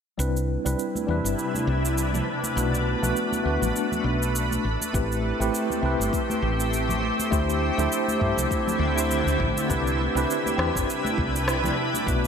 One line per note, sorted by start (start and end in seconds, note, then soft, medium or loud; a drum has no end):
0.18 0.56 C2 medium
0.18 2.25 C3 medium
0.18 0.61 G3 medium
0.18 2.25 G3 medium
0.18 0.61 C4 medium
0.18 0.61 D4 medium
0.18 4.61 D4 medium
0.18 0.61 E4 medium
0.18 2.25 E4 medium
0.18 4.61 B4 medium
0.18 0.62 B4 medium
0.18 cabasa soft
0.37 cabasa soft
0.65 0.74 C2 medium
0.65 0.81 G3 medium
0.65 0.81 C4 medium
0.65 0.82 D4 medium
0.65 0.82 E4 medium
0.65 0.82 B4 medium
0.65 cabasa medium
0.79 cabasa soft
0.95 high conga medium
0.95 cabasa soft
1.07 1.19 E2 medium
1.07 2.25 G3 medium
1.07 2.25 C4 medium
1.07 2.26 D4 medium
1.07 2.26 E4 medium
1.11 2.27 B4 medium
1.24 1.33 G1 medium
1.24 cabasa medium
1.39 cabasa soft
1.55 high conga medium
1.55 cabasa soft
1.67 2.20 C2 medium
1.85 cabasa medium
1.98 cabasa medium
2.13 high conga medium
2.13 low conga medium
2.13 cabasa soft
2.27 9.65 A3 medium
2.43 high conga medium
2.43 cabasa medium
2.56 2.94 B1 medium
2.56 2.98 A3 medium
2.56 2.99 B3 medium
2.56 2.99 D4 medium
2.56 2.99 F#4 medium
2.56 3.00 B4 medium
2.56 cabasa medium
2.75 cabasa soft
3.02 3.11 B1 medium
3.02 3.19 A3 medium
3.02 3.19 B3 medium
3.02 3.19 D4 medium
3.02 3.19 F#4 medium
3.02 3.19 B4 medium
3.02 low conga medium
3.02 cabasa medium
3.16 cabasa medium
3.32 high conga medium
3.32 cabasa soft
3.43 3.57 D2 medium
3.43 4.62 A3 medium
3.43 4.62 B3 medium
3.43 4.63 D4 medium
3.43 4.63 F#4 medium
3.43 4.64 B4 medium
3.62 3.71 A1 medium
3.62 low conga medium
3.62 cabasa medium
3.76 cabasa soft
3.92 high conga medium
3.92 low conga medium
3.92 cabasa soft
4.04 4.57 B1 medium
4.23 cabasa medium
4.36 cabasa medium
4.51 high conga medium
4.51 cabasa soft
4.65 4.76 A1 medium
4.65 9.66 C4 medium
4.65 9.66 G4 medium
4.81 high conga medium
4.81 cabasa medium
4.93 5.31 A1 medium
4.93 5.36 A3 medium
4.93 5.36 C4 medium
4.93 5.36 E4 medium
4.93 5.37 G4 medium
4.93 5.37 B4 medium
4.93 kick loud
4.93 cabasa medium
5.12 cabasa soft
5.40 5.49 A1 medium
5.40 5.56 A3 medium
5.40 5.57 C4 medium
5.40 5.57 E4 medium
5.40 5.57 G4 medium
5.40 5.57 B4 medium
5.40 cabasa medium
5.54 cabasa medium
5.70 high conga medium
5.70 cabasa soft
5.82 5.94 C2 medium
5.82 7.28 A3 medium
5.82 7.28 C4 medium
5.82 7.29 E4 medium
5.82 7.29 G4 medium
5.86 7.30 B4 medium
5.99 6.08 G1 medium
5.99 cabasa medium
6.13 kick loud
6.13 cabasa soft
6.30 high conga medium
6.30 cabasa soft
6.42 7.10 A1 medium
6.60 cabasa medium
6.73 cabasa medium
6.89 high conga medium
6.89 low conga medium
6.89 cabasa soft
7.20 high conga medium
7.20 cabasa medium
7.31 7.69 D2 medium
7.31 9.67 D3 medium
7.31 7.74 A3 medium
7.31 7.74 D4 medium
7.31 7.74 E4 medium
7.31 9.67 E4 medium
7.31 7.74 G4 medium
7.31 7.75 C5 medium
7.31 kick loud
7.31 cabasa medium
7.50 cabasa soft
7.78 7.87 D2 medium
7.78 7.94 A3 medium
7.78 7.95 D4 medium
7.78 7.95 E4 medium
7.78 7.95 G4 medium
7.78 7.95 C5 medium
7.78 low conga medium
7.78 cabasa medium
7.92 cabasa medium
8.08 high conga medium
8.08 cabasa soft
8.19 8.32 G2 medium
8.19 8.93 A3 medium
8.19 8.93 D4 medium
8.19 8.94 E4 medium
8.19 8.94 G4 medium
8.19 kick medium
8.23 8.95 C5 medium
8.37 8.46 C2 medium
8.37 low conga medium
8.37 cabasa medium
8.51 kick loud
8.51 cabasa medium
8.68 high conga medium
8.68 low conga medium
8.68 cabasa soft
8.79 9.26 D2 medium
8.96 9.66 A3 medium
8.96 9.66 D4 medium
8.96 9.66 E4 medium
8.96 9.67 G4 medium
8.96 9.67 C5 medium
8.96 cabasa medium
9.11 cabasa medium
9.26 9.35 D2 medium
9.26 high conga medium
9.26 cabasa soft
9.40 9.51 A1 medium
9.40 kick loud
9.57 high conga medium
9.57 cabasa medium
9.69 10.07 C2 medium
9.69 11.75 C3 medium
9.69 11.75 G3 medium
9.69 10.11 C4 medium
9.69 10.12 D4 medium
9.69 12.27 D4 medium
9.69 11.75 E4 medium
9.69 10.12 E4 medium
9.69 10.12 G4 medium
9.69 12.27 B4 medium
9.69 10.12 B4 medium
9.69 kick loud
9.69 cabasa medium
9.87 cabasa soft
10.15 10.24 C2 medium
10.15 10.32 C4 medium
10.15 10.32 D4 medium
10.15 10.32 E4 medium
10.15 10.33 G4 medium
10.15 10.33 B4 medium
10.15 cabasa medium
10.30 cabasa medium
10.46 high conga medium
10.46 cabasa soft
10.57 10.69 E2 medium
10.57 11.75 C4 medium
10.57 11.75 D4 medium
10.57 11.76 E4 medium
10.57 11.76 G4 medium
10.57 11.77 B4 medium
10.57 cross-stick medium
10.75 10.84 G1 medium
10.75 kick loud
10.75 high bongo medium
10.75 cabasa medium
10.90 cabasa soft
11.05 high bongo soft
11.05 high conga medium
11.05 cabasa soft
11.18 11.70 C2 medium
11.18 kick loud
11.36 cabasa medium
11.48 cross-stick medium
11.48 cabasa medium
11.64 high conga medium
11.64 low conga medium
11.64 cabasa soft
11.78 12.27 A3 medium
11.78 high bongo soft
11.94 high conga medium
11.94 cabasa medium
12.06 12.27 B1 medium
12.06 12.27 A3 medium
12.06 12.27 B3 medium
12.06 12.27 D4 medium
12.06 12.27 F#4 medium
12.06 12.27 B4 medium
12.06 kick loud
12.06 cabasa medium